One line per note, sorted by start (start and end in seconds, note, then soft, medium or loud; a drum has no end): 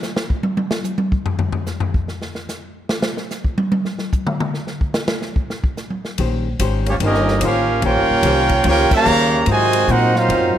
0.03 snare medium
0.03 hi-hat pedal medium
0.16 snare medium
0.30 kick medium
0.43 high tom medium
0.57 high tom loud
0.71 snare loud
0.84 hi-hat pedal medium
0.84 high tom soft
0.98 high tom medium
1.12 kick medium
1.26 floor tom loud
1.39 floor tom loud
1.52 floor tom loud
1.66 snare soft
1.66 hi-hat pedal medium
1.80 floor tom loud
1.94 kick medium
2.08 snare soft
2.22 snare soft
2.35 snare soft
2.49 snare soft
2.49 hi-hat pedal medium
2.89 snare loud
3.02 snare loud
3.17 snare soft
3.31 snare soft
3.31 hi-hat pedal medium
3.44 kick medium
3.58 high tom loud
3.72 high tom loud
3.85 snare soft
3.99 snare soft
4.13 kick medium
4.13 hi-hat pedal medium
4.27 mid tom loud
4.40 mid tom loud
4.54 snare soft
4.67 snare soft
4.81 kick medium
4.94 snare loud
4.94 hi-hat pedal medium
5.08 snare loud
5.22 snare soft
5.36 kick medium
5.50 snare soft
5.64 kick medium
5.77 snare soft
5.77 hi-hat pedal medium
5.90 high tom soft
6.05 snare soft
6.18 6.59 A#1 medium
6.18 6.47 D#3 medium
6.18 6.47 C#4 soft
6.18 6.47 G4 medium
6.18 6.48 C5 medium
6.18 kick soft
6.18 ride medium
6.59 6.99 G#1 medium
6.59 6.88 D#3 medium
6.59 6.88 C#4 medium
6.59 6.89 G4 medium
6.59 6.89 C5 medium
6.59 kick soft
6.59 hi-hat pedal medium
6.59 ride medium
6.86 6.94 G3 medium
6.86 6.93 A#3 medium
6.86 6.96 A#3 medium
6.86 6.93 C#4 medium
6.86 6.96 F4 medium
6.86 6.96 G4 medium
6.86 6.95 C#5 medium
6.86 ride medium
7.00 7.40 G1 loud
7.00 7.29 D#3 soft
7.00 7.39 G3 medium
7.00 7.39 A#3 medium
7.00 7.29 C#4 soft
7.00 7.40 D#4 medium
7.00 7.30 G4 medium
7.00 7.30 C5 medium
7.00 kick soft
7.00 ride medium
7.05 7.41 C#4 medium
7.05 7.42 G4 medium
7.05 7.41 A#4 medium
7.05 7.42 D#5 medium
7.14 snare soft
7.28 snare soft
7.41 7.81 A1 medium
7.41 7.71 D#3 medium
7.41 7.80 A#3 medium
7.41 7.80 C#4 medium
7.41 7.71 C#4 medium
7.41 7.80 F4 medium
7.41 7.71 G4 medium
7.41 7.71 C5 medium
7.41 kick soft
7.41 hi-hat pedal medium
7.41 ride medium
7.45 7.82 C#4 medium
7.45 7.82 G4 medium
7.45 7.82 A#4 medium
7.45 7.82 F5 medium
7.82 7.96 A#1 medium
7.82 8.12 D#3 soft
7.82 8.64 A#3 loud
7.82 8.64 C#4 medium
7.82 8.12 C#4 medium
7.82 8.66 F4 loud
7.82 8.64 G4 medium
7.82 8.12 G4 medium
7.82 8.67 A#4 loud
7.82 8.66 C#5 loud
7.82 8.67 G5 loud
7.82 kick soft
7.82 ride medium
7.86 8.13 C5 medium
7.96 8.09 G1 medium
8.10 8.22 D#1 medium
8.23 8.63 C2 loud
8.23 8.53 D#3 medium
8.23 8.53 C#4 medium
8.23 8.53 G4 medium
8.23 kick soft
8.23 hi-hat pedal medium
8.23 ride medium
8.27 8.54 C5 medium
8.49 kick medium
8.49 ride medium
8.64 8.90 C#2 loud
8.64 8.93 D#3 soft
8.64 8.90 A#3 medium
8.64 8.90 C#4 medium
8.64 8.94 C#4 medium
8.64 8.90 G4 medium
8.64 8.94 G4 medium
8.64 8.95 C5 medium
8.64 kick soft
8.64 ride medium
8.69 8.92 F4 medium
8.69 8.92 A#4 medium
8.69 8.92 C#5 loud
8.69 8.92 G5 loud
8.91 9.44 C#3 loud
8.91 9.44 G3 loud
8.91 9.44 A#3 loud
8.91 muted upright bass stroke soft
8.91 kick loud
8.91 crash medium
8.95 9.45 G4 loud
8.95 9.45 C#5 loud
8.95 9.45 F5 loud
8.95 9.46 A#5 loud
9.05 9.46 D#2 loud
9.05 9.34 D#3 medium
9.05 9.34 C#4 medium
9.05 9.35 G4 medium
9.05 9.35 C5 medium
9.05 hi-hat pedal medium
9.46 9.75 G#2 medium
9.46 9.87 G#2 medium
9.46 9.89 C3 medium
9.46 9.89 D#3 medium
9.46 9.75 F#3 soft
9.46 9.89 G#3 medium
9.46 9.76 C4 soft
9.46 9.76 F4 medium
9.46 kick soft
9.46 ride medium
9.50 9.90 F#4 medium
9.50 9.89 C5 loud
9.50 9.91 D#5 medium
9.50 9.90 G#5 loud
9.73 ride medium
9.88 10.17 G#2 medium
9.88 10.28 A#2 loud
9.88 10.17 F#3 medium
9.88 10.13 C4 medium
9.88 10.17 C4 medium
9.88 10.15 D#4 medium
9.88 10.17 D#4 medium
9.88 10.18 F4 medium
9.88 10.15 F#4 medium
9.88 10.16 A#4 medium
9.88 10.16 C5 medium
9.88 10.17 F#5 loud
9.88 kick soft
9.88 hi-hat pedal medium
10.14 10.56 F#3 loud
10.14 10.56 C4 loud
10.14 10.56 F4 loud
10.14 snare soft
10.18 10.58 D#4 medium
10.18 10.58 A#4 medium
10.18 10.58 C5 medium
10.18 10.58 F5 loud
10.29 10.54 F#2 loud
10.29 10.58 G#2 soft
10.29 10.58 F#3 soft
10.29 10.58 C4 medium
10.29 10.58 F4 medium
10.29 kick soft
10.29 ride medium
10.55 muted upright bass stroke soft